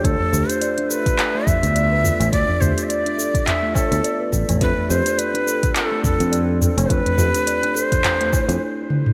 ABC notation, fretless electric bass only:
X:1
M:4/4
L:1/16
Q:"Swing 16ths" 1/4=105
K:Ddor
V:1 name="Fretless electric bass" clef=bass
D,, z D,, z8 D,,3 z A,,, | D,, z D,, z8 D,, z2 A,,, A,,, | F,, z F,, z8 F,,3 z F,,, | F,, z F,, z8 F,, z4 |]